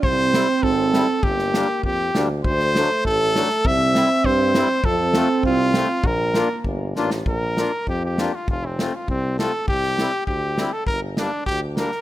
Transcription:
<<
  \new Staff \with { instrumentName = "Trumpet" } { \time 2/4 \key bes \major \tempo 4 = 100 c''4 a'4 | g'4 g'8. r16 | c''4 a'4 | e''4 c''4 |
a'4 f'4 | bes'4 r4 | bes'4 g'16 g'8 f'16 | f'16 c'8 f'16 c'8 a'8 |
g'4 g'8. a'16 | bes'8 d'8 g'8 bes'8 | }
  \new Staff \with { instrumentName = "Accordion" } { \time 2/4 \key bes \major r8 <g c' e'>8 r8 <g c' e'>8 | r8 <g bes d'>8 r8 <g bes d'>8 | r8 <fis a d'>8 r8 <fis a d'>8 | r8 <g c' e'>8 r8 <g c' e'>8 |
r8 <a c' f'>8 r8 <a c' f'>8 | r8 <bes d' f'>8 r8 <bes d' f'>8 | r8 <bes d' f'>8 r8 <bes d' f'>8 | r8 <a c' f'>8 r8 <a c' f'>8 |
r8 <g c' e'>8 r8 <g c' e'>8 | r8 <g bes d'>8 r8 <g bes d'>8 | }
  \new Staff \with { instrumentName = "Euphonium" } { \time 2/4 \key bes \major c'2 | bes4. r8 | a2 | c'2 |
c'2 | bes4. r8 | r2 | r2 |
r2 | r2 | }
  \new Staff \with { instrumentName = "Tuba" } { \clef bass \time 2/4 \key bes \major c,4 aes,,4 | g,,4 f,8 d,8 | d,4 a,,4 | c,4 g,4 |
f,4 c,4 | bes,,4 g,,8 a,,8 | bes,,4 f,4 | f,,4 c,4 |
c,4 d,4 | g,,4 d,4 | }
  \new DrumStaff \with { instrumentName = "Drums" } \drummode { \time 2/4 bd8 sn8 bd8 sn8 | bd16 sn16 sn8 bd8 sn8 | bd16 sn16 sn8 bd8 sn16 sn16 | bd8 sn8 bd8 sn8 |
bd8 sn8 bd8 sn8 | bd8 sn8 bd8 sn16 sn16 | bd8 sn8 bd8 sn8 | bd8 sn8 bd8 sn8 |
bd16 sn16 sn8 bd8 sn8 | bd8 sn8 bd8 sn16 sn16 | }
>>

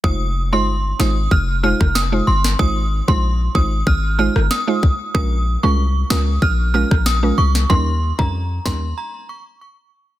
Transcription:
<<
  \new Staff \with { instrumentName = "Synth bell" } { \time 4/4 \key f \minor \tempo 4 = 94 ees'''16 r8 c'''16 r8 ees'''16 r16 f'''16 r16 f'''16 r16 ees'''16 r16 c'''16 r16 | ees'''16 r8 c'''16 r8 ees'''16 r16 f'''16 r16 f'''16 r16 ees'''8. r16 | ees'''16 r8 des'''16 r8 ees'''16 r16 f'''16 r16 f'''16 r16 ees'''16 r16 des'''16 r16 | c'''16 r8 bes''16 r8 c'''16 r16 bes''16 r16 des'''16 r16 des'''8. r16 | }
  \new Staff \with { instrumentName = "Synth pluck" } { \time 4/4 \key f \minor <aes ees' f' c''>16 r8 <aes ees' f' c''>16 r8 <aes ees' f' c''>16 r8. <aes ees' f' c''>16 r8 <aes ees' f' c''>16 r8 | <aes ees' f' c''>16 r8 <aes ees' f' c''>16 r8 <aes ees' f' c''>16 r8. <aes ees' f' c''>16 r8 <aes ees' f' c''>16 r8 | <aes des' f' bes'>16 r8 <aes des' f' bes'>16 r8 <aes des' f' bes'>16 r8. <aes des' f' bes'>16 r8 <aes des' f' bes'>16 r8 | <g des' ees' bes'>16 r8 <g des' ees' bes'>16 r8 <g des' ees' bes'>16 r2 r16 | }
  \new Staff \with { instrumentName = "808-style bass" } { \clef bass \time 4/4 \key f \minor f,,8. g,,8. aes,,8 f,,8. f,,8. g,,8 | aes,,8. bes,,8. aes,,8 aes,,8. g,,16 r4 | bes,,8. c,8. des,8 bes,,8. bes,,8. c,8 | ees,8. f,8. ees,8 r2 | }
  \new DrumStaff \with { instrumentName = "Drums" } \drummode { \time 4/4 bd4 r8 sn8 bd8. <bd ss>16 sn8. sn16 | bd8. bd16 r8 bd8 bd8. ss16 sn8 bd8 | bd4 r8 sn8 bd8. <bd ss>16 sn8. sn16 | bd8. bd16 r8 <bd sn>8 r4 r4 | }
>>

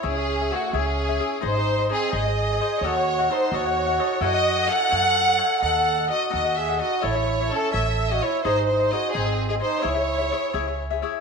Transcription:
<<
  \new Staff \with { instrumentName = "Violin section" } { \time 6/8 \key cis \minor \tempo 4. = 86 gis'4 fis'8 gis'4. | bis'4 gis'8 dis''4. | cis''4 bis'8 cis''4. | dis''4 fis''2 |
fis''4 dis''8 dis''8 e''8 dis''8 | cis''4 a'8 e''8. dis''16 cis''8 | bis'8 bis'8 dis''8 gis'8. gis'16 bis'8 | cis''2 r4 | }
  \new Staff \with { instrumentName = "Cavaquinho" } { \time 6/8 \key cis \minor <e' gis' cis'' e''>16 <gis' cis'' e''>8 <gis' cis'' e''>16 <e' gis' cis'' e''>8 <e' gis' cis'' e''>16 <gis' cis'' e''>8 <gis' cis'' e''>16 <e' gis' cis'' e''>8 | <dis' gis' bis' dis''>16 <gis' bis' dis''>8 <gis' bis' dis''>16 <dis' gis' bis' dis''>8 <dis' gis' bis' dis''>16 <gis' bis' dis''>8 <gis' bis' dis''>16 <dis' gis' bis' dis''>8 | <dis' a' dis'' fis''>16 <a' fis''>8 <a' dis'' fis''>16 <dis' a' dis'' fis''>8 <dis' a' dis'' fis''>16 <a' dis'' fis''>8 <a' dis'' fis''>16 <dis' a' dis'' fis''>8 | <e' a' cis'' fis''>16 <a' cis'' fis''>8 <a' cis'' fis''>16 <e' a' cis'' fis''>8 <e' a' cis'' fis''>16 <a' cis'' fis''>8 <a' cis'' fis''>16 <e' a' cis''>8 |
<dis' a' dis'' fis''>16 <a' dis'' fis''>8 <a' dis'' fis''>16 <dis' a' dis'' fis''>8 <dis' a' dis'' fis''>16 <a' dis'' fis''>8 <a' dis'' fis''>16 <dis' a' dis'' fis''>8 | <e' a' cis'' e''>16 <a' cis'' e''>8 <a' cis'' e''>16 <e' a' cis'' e''>8 <e' a' cis'' e''>16 <a' cis'' e''>8 <a' cis'' e''>16 <e' a' cis'' e''>8 | <dis' gis' bis' dis''>16 <gis' bis' dis''>8 <gis' bis' dis''>16 <dis' gis' bis' dis''>8 <dis' gis' bis' dis''>16 <gis' bis' dis''>8 <gis' bis' dis''>16 <dis' gis' bis' dis''>8 | <e' gis' cis'' e''>16 <gis' cis'' e''>8 <gis' cis'' e''>16 <e' gis' cis'' e''>8 <e' gis' cis'' e''>16 <gis' cis'' e''>8 <gis' cis'' e''>16 <e' gis' cis'' e''>8 | }
  \new Staff \with { instrumentName = "Trumpet" } { \time 6/8 \key cis \minor cis'4 a8 cis'4. | dis'4 bis8 gis'4. | fis'4 dis'8 fis'4. | fis'4 a'2 |
a'4 fis'8 fis'8 gis'8 fis'8 | e'4 cis'8 a'8. fis'16 e'8 | dis'8 dis'8 fis'8 bis8. bis16 dis'8 | e'2 r4 | }
  \new Staff \with { instrumentName = "Upright bass" } { \clef bass \time 6/8 \key cis \minor cis,4. cis,4. | gis,,4. gis,,4. | dis,4. dis,4. | fis,4. fis,4. |
dis,4. dis,4. | a,,4. a,,4. | gis,,4. gis,,4. | cis,4. cis,4. | }
>>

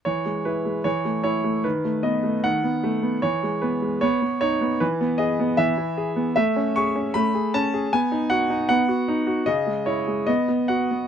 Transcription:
<<
  \new Staff \with { instrumentName = "Grand piano" } { \time 2/4 \key e \major \tempo 4 = 76 cis''8 b'8 cis''8 cis''8 | b'8 dis''8 fis''4 | cis''8 b'8 cis''8 cis''8 | b'8 dis''8 e''4 |
e''8 cis'''8 b''8 a''8 | gis''8 fis''8 fis''4 | dis''8 cis''8 dis''8 fis''8 | }
  \new Staff \with { instrumentName = "Grand piano" } { \time 2/4 \key e \major e16 gis16 e'16 gis16 e16 a16 e'16 a16 | dis16 a16 b16 a16 dis16 b16 a16 b16 | e16 gis16 b16 gis16 b16 b16 dis'16 b16 | e16 b16 gis'16 b16 e16 e'16 gis'16 b16 |
a16 cis'16 gis'16 cis'16 a16 gis'16 cis'16 gis'16 | b16 dis'16 fis'16 dis'16 b16 fis'16 dis'16 fis'16 | cis16 gis16 e'16 gis16 b16 b16 fis'16 b16 | }
>>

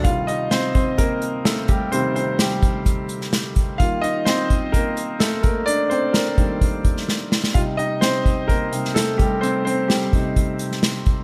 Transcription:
<<
  \new Staff \with { instrumentName = "Grand piano" } { \time 4/4 \key c \dorian \tempo 4 = 128 <f' f''>8 <ees' ees''>8 <c' c''>8 <c' c''>8 <bes bes'>4 <a a'>8 <g g'>8 | <c' c''>8 <c' c''>8 <g g'>2 r4 | <f' f''>8 <ees' ees''>8 <c' c''>4 <bes bes'>4 <a a'>8 <bes bes'>8 | <d' d''>8 <c' c''>8 <bes bes'>2 r4 |
<f' f''>8 <ees' ees''>8 <c' c''>4 <bes bes'>4 <a a'>8 <g g'>8 | <c' c''>8 <c' c''>8 <g g'>2 r4 | }
  \new Staff \with { instrumentName = "Grand piano" } { \clef bass \time 4/4 \key c \dorian <c ees g>4. r2 r8 | <c ees g>1 | <ees g bes>4. r2 r8 | r4. <ees g bes>2~ <ees g bes>8 |
<c g ees'>8 r2 <c g ees'>8 r4 | r4. <c g ees'>4. r4 | }
  \new DrumStaff \with { instrumentName = "Drums" } \drummode { \time 4/4 <hh bd>8 hh8 <hh sn>8 <hh bd>8 <hh bd>8 hh8 <hh sn>8 <hh bd>8 | hh8 hh8 <hh sn>8 <hh bd>8 <hh bd>8 hh16 sn16 <hh sn>8 <hh bd>8 | <hh bd>8 hh8 <hh sn>8 <hh bd>8 <hh bd>8 hh8 <hh sn>8 <hh bd>8 | hh8 hh8 <hh sn>8 <hh bd>8 <hh bd>8 <hh bd>16 sn16 sn8 sn16 sn16 |
<hh bd>8 hh8 <hh sn>8 <hh bd>8 <hh bd>8 hh16 sn16 <hh sn>8 <hh bd>8 | hh8 hh8 <hh sn>8 <hh bd>8 <hh bd>8 hh16 sn16 <hh sn>8 <hh bd>8 | }
>>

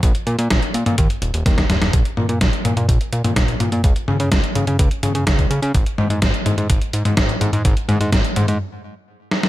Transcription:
<<
  \new Staff \with { instrumentName = "Analog synth bass" } { \clef bass \time 4/4 \key bes \dorian \tempo 4 = 126 bes,,16 r16 bes,16 bes,16 bes,,16 r16 bes,16 bes,16 ees,16 r16 ees,,16 ees,,16 ees,8 ees,,16 ees,,16 | bes,,16 r16 bes,16 bes,16 bes,,16 r16 bes,16 bes,16 bes,,16 r16 bes,16 bes,16 bes,,8 bes,16 bes,16 | des,16 r16 des16 des16 des,16 r16 des16 des16 des,16 r16 des16 des16 des,8 des16 des16 | aes,,16 r16 aes,16 aes,16 aes,,16 r16 aes,16 aes,16 aes,,16 r16 aes,16 aes,16 aes,,8 aes,16 aes,16 |
aes,,16 r16 aes,16 aes,16 aes,,16 r16 aes,16 aes,16 r2 | }
  \new DrumStaff \with { instrumentName = "Drums" } \drummode { \time 4/4 <hh bd>16 hh16 hh16 hh16 <hh bd sn>16 hh16 hh16 <hh tommh>16 <hh bd>16 hh16 hh16 hh16 <hh bd sn>16 <hh bd sn>16 <hh sn tommh>16 <hh sn>16 | <hh bd>16 hh16 tommh16 hh16 <hh bd sn>16 hh16 <hh tommh>16 hh16 <hh bd>16 hh16 hh16 <hh tommh>16 <hh bd sn>16 hh16 <hh tommh>16 hh16 | <hh bd>16 hh16 tommh16 hh16 <hh bd sn>16 hh16 <hh tommh>16 hh16 <hh bd>16 hh16 <hh tommh>16 hh16 <hh bd sn>16 <hh bd>16 hh16 hh16 | <hh bd>16 hh16 tommh16 hh16 <hh bd sn>16 hh16 <hh tommh>16 hh16 <hh bd>16 hh16 hh16 <hh tommh>16 <hh bd sn>16 hh16 <hh tommh>16 hh16 |
<hh bd>16 hh16 <hh tommh>16 hh16 <hh bd sn>16 hh16 <hh tommh>16 hh16 r4 r8 sn16 sn16 | }
>>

